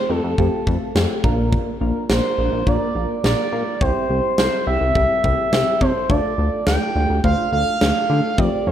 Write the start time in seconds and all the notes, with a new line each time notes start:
Already playing: C5
0.09 F2 A3 C4 F4 G4 A4
0.24 F2
0.38 F2 A3 C4 F4 G4, kick
0.67 F2 A3 C4 F4 A4, kick
0.95 F2 A3 C4 F4 G4, snare
1.24 A#1 A#3 D4 F4 A#4, kick
1.53 kick
1.81 A#1 A#3 D4 F4 A#4
2.10 A#1 A#3 D4 F4 A#4 C5, snare
2.38 A#1 A#3 D4 F4 A#4
2.52 A#1
2.67 A#1 A#3 D4 F4 A#4 D5, kick
2.95 A#1 A#3 D4 F4 A#4
3.24 A#1 A#3 D4 F4 A#4 D5, snare
3.52 A#2 A#3 D4 F4 A#4
3.81 C2 G3 C4 E4 G4 C5, kick
4.10 C2 G3 C4 E4 G4
4.38 C2 G3 C4 E4 A4 C5, snare
4.67 C2 G3 C4 E4 G4 E5
4.81 C2
4.95 C2 G3 C4 E4 G4, kick
5.24 C2 G3 C4 E4 G4, kick
5.52 C2 G3 C4 E4 G4, snare
5.81 C3 G3 C4 E4 A4 C5, kick
6.10 D2 A3 D4 F4 A4 D5, kick
6.38 D2 A3 D4 F4 A4
6.67 D2 A3 D4 F4 A4 G5, snare
6.95 D2 A3 D4 F4 G4
7.10 D2
7.24 D2 A3 D4 F4 C5 F5, kick
7.53 D2 A3 D4 F4 A4 F5
7.81 D2 A3 D4 F4 A4, snare
8.10 D3 A3 D4 F4 A4
8.38 F2 A3 C4 F4 G4 D5, kick
8.67 F2 A3 C4 F4 G4 C5